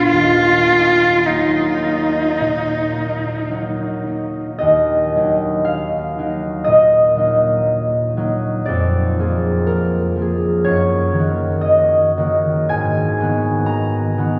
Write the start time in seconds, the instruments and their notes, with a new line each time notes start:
Already playing: harp A#2 A#3 B3 D4
0.09 harp D#2, cello F4
0.70 harp A#3 D#4
1.26 harp F#3 A#3 D#4, cello D#4
1.83 harp A#3 D#4
2.40 harp A#2
2.96 harp A#3 D#4
3.51 harp F#3 A#3 D#4
4.06 harp A#3 D#4
4.58 harp D#2 D#5
5.16 harp F#3 A#3 D#4
5.65 harp F5
6.18 harp F#3 A#3 D#4
6.64 harp A#2 D#5
7.16 harp F#3 A#3 D#4
8.17 harp F#3 A#3 D#4
8.66 harp F2 D5
9.19 harp F3 A#3 G#4
9.67 harp A#4
10.16 harp F3 A#3
10.21 harp G#4
10.64 harp F#2 C#5
11.12 harp D#3 A#3
11.18 harp F#4
11.61 harp D#5
12.17 harp D#3 A#3 F#4
12.69 harp G#2 G#5
13.20 harp D#3 B3 F#4
13.66 harp A#5
14.18 harp D#3 B3 F#4